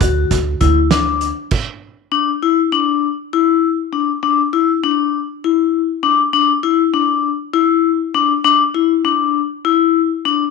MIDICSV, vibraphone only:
0, 0, Header, 1, 2, 480
1, 0, Start_track
1, 0, Key_signature, 2, "major"
1, 0, Tempo, 602410
1, 7, Time_signature, 7, 3, 24, 8
1, 8370, End_track
2, 0, Start_track
2, 0, Title_t, "Vibraphone"
2, 0, Program_c, 0, 11
2, 4, Note_on_c, 0, 66, 67
2, 282, Note_off_c, 0, 66, 0
2, 483, Note_on_c, 0, 64, 73
2, 623, Note_off_c, 0, 64, 0
2, 726, Note_on_c, 0, 62, 84
2, 1004, Note_off_c, 0, 62, 0
2, 1686, Note_on_c, 0, 62, 77
2, 1825, Note_off_c, 0, 62, 0
2, 1932, Note_on_c, 0, 64, 70
2, 2069, Note_off_c, 0, 64, 0
2, 2169, Note_on_c, 0, 62, 75
2, 2446, Note_off_c, 0, 62, 0
2, 2654, Note_on_c, 0, 64, 80
2, 2929, Note_off_c, 0, 64, 0
2, 3129, Note_on_c, 0, 62, 66
2, 3267, Note_off_c, 0, 62, 0
2, 3369, Note_on_c, 0, 62, 75
2, 3507, Note_off_c, 0, 62, 0
2, 3610, Note_on_c, 0, 64, 76
2, 3748, Note_off_c, 0, 64, 0
2, 3853, Note_on_c, 0, 62, 75
2, 4128, Note_off_c, 0, 62, 0
2, 4337, Note_on_c, 0, 64, 78
2, 4611, Note_off_c, 0, 64, 0
2, 4804, Note_on_c, 0, 62, 70
2, 4944, Note_off_c, 0, 62, 0
2, 5046, Note_on_c, 0, 62, 79
2, 5185, Note_off_c, 0, 62, 0
2, 5285, Note_on_c, 0, 64, 75
2, 5424, Note_off_c, 0, 64, 0
2, 5527, Note_on_c, 0, 62, 73
2, 5804, Note_off_c, 0, 62, 0
2, 6004, Note_on_c, 0, 64, 90
2, 6282, Note_off_c, 0, 64, 0
2, 6489, Note_on_c, 0, 62, 78
2, 6627, Note_off_c, 0, 62, 0
2, 6728, Note_on_c, 0, 62, 85
2, 6866, Note_off_c, 0, 62, 0
2, 6968, Note_on_c, 0, 64, 73
2, 7106, Note_off_c, 0, 64, 0
2, 7208, Note_on_c, 0, 62, 76
2, 7485, Note_off_c, 0, 62, 0
2, 7688, Note_on_c, 0, 64, 79
2, 7965, Note_off_c, 0, 64, 0
2, 8170, Note_on_c, 0, 62, 68
2, 8308, Note_off_c, 0, 62, 0
2, 8370, End_track
0, 0, End_of_file